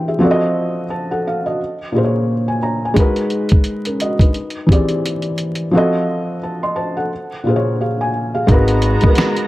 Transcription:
0.00 0.23 E3 medium
0.00 0.23 D4 medium
0.00 0.23 G4 medium
0.00 0.08 G#4 medium
0.00 0.23 A#4 medium
0.00 0.23 C5 medium
0.00 0.08 E5 medium
0.00 0.23 G5 medium
0.08 0.40 G#4 medium
0.08 0.40 E5 medium
0.19 0.84 F3 medium
0.19 0.85 C4 loud
0.19 0.85 F#4 medium
0.23 0.86 A4 medium
0.23 0.30 D5 medium
0.31 0.90 D#5 loud
0.90 1.09 C5 soft
0.90 1.09 A5 medium
1.11 1.25 A4 medium
1.11 1.25 F#5 medium
1.27 1.45 A4 medium
1.27 1.44 F5 medium
1.46 1.78 F#4 soft
1.46 1.78 D#5 medium
1.92 2.57 A#2 medium
1.92 2.58 A#3 medium
1.92 2.58 F4 medium
1.96 2.59 G#4 medium
1.96 2.03 C5 medium
2.04 2.33 C#5 medium
2.48 2.62 G#5 medium
2.63 2.81 C#5 soft
2.63 2.81 A#5 medium
2.85 3.16 G#5 medium
2.94 3.82 G#3 loud
2.94 3.65 D#4 medium
2.94 3.66 F#4 medium
2.94 kick loud
2.94 closed hi-hat medium
2.98 3.67 A#4 medium
2.98 3.67 B4 loud
3.16 closed hi-hat soft
3.30 closed hi-hat medium
3.49 kick medium
3.49 closed hi-hat soft
3.64 closed hi-hat medium
3.85 4.00 C#4 medium
3.85 4.00 A#4 medium
3.85 closed hi-hat soft
4.00 4.20 F#4 medium
4.00 4.19 D#5 medium
4.00 closed hi-hat medium
4.19 4.54 D#4 medium
4.19 4.53 B4 medium
4.19 kick medium
4.19 closed hi-hat soft
4.34 closed hi-hat medium
4.50 closed hi-hat soft
4.67 5.32 E3 medium
4.67 5.33 C4 medium
4.67 5.34 G4 medium
4.67 kick medium
4.71 5.35 G#4 medium
4.71 5.35 D5 medium
4.71 closed hi-hat medium
4.89 closed hi-hat soft
5.06 closed hi-hat medium
5.22 closed hi-hat soft
5.38 closed hi-hat medium
5.55 closed hi-hat soft
5.71 6.36 F3 medium
5.71 6.37 C4 medium
5.71 6.38 F#4 medium
5.76 6.39 A4 medium
5.76 6.39 D#5 loud
6.43 6.61 C5 soft
6.43 6.61 A5 medium
6.63 6.77 D#5 medium
6.63 6.77 C6 medium
6.76 6.95 C5 soft
6.76 6.94 A5 medium
6.97 7.29 A4 soft
6.97 7.29 F#5 medium
7.44 8.09 A#2 medium
7.44 8.09 A#3 medium
7.44 8.10 F4 medium
7.48 7.80 G#4 medium
7.48 7.55 C5 medium
7.56 7.85 C#5 medium
7.81 7.99 G#4 soft
7.81 7.99 F5 medium
8.01 8.33 G#5 medium
8.35 8.67 G#4 soft
8.35 8.67 F5 medium
8.47 8.93 G#1 loud
8.47 8.80 G#3 loud
8.47 9.47 G#3 medium
8.47 9.47 B3 medium
8.47 8.81 D#4 medium
8.47 9.47 F#4 medium
8.47 8.82 F#4 medium
8.47 9.47 A#5 medium
8.47 kick loud
8.47 closed hi-hat medium
8.51 8.82 A#4 medium
8.51 8.83 B4 loud
8.68 closed hi-hat soft
8.82 closed hi-hat medium
9.01 9.34 G#3 medium
9.01 9.34 D#4 medium
9.01 kick medium
9.01 closed hi-hat soft
9.05 9.35 F#4 medium
9.05 9.36 A#4 medium
9.05 9.37 B4 medium
9.15 finger snap medium
9.15 snare loud
9.15 closed hi-hat medium
9.37 closed hi-hat soft

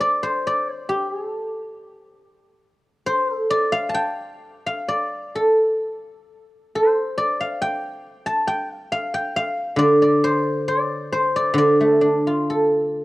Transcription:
0.00 0.23 C5 medium
0.00 0.46 D5 medium
0.23 0.73 C5 medium
0.47 0.73 D5 medium
0.73 2.32 C5 medium
0.89 1.12 G4 medium
1.12 1.26 G#4 medium
1.26 3.08 A4 medium
3.06 3.34 C5 medium
3.34 5.05 A4 medium
3.50 4.88 D5 medium
3.72 4.66 F5 loud
3.89 5.34 A5 medium
3.94 5.50 G5 loud
4.66 6.33 F5 medium
4.88 6.73 D5 medium
5.35 7.55 A4 medium
6.75 8.74 C5 medium
7.18 9.02 D5 medium
7.40 8.73 F5 medium
7.62 8.47 G5 loud
8.26 9.71 A5 medium
8.47 8.73 G5 medium
8.73 8.92 F5 medium
8.92 9.36 F5 medium
9.14 10.69 G5 loud
9.36 11.03 F5 loud
9.76 11.52 D3 medium
9.76 10.02 D5 medium
10.02 10.68 D5 medium
10.24 11.12 C5 medium
10.68 11.36 D5 medium
11.13 13.05 C5 medium
11.36 11.58 D5 medium
11.54 13.05 D3 medium
11.58 13.05 D5 medium
11.80 13.05 A3 medium
12.01 13.05 D4 medium
12.27 13.05 F4 medium
12.50 13.05 A4 medium

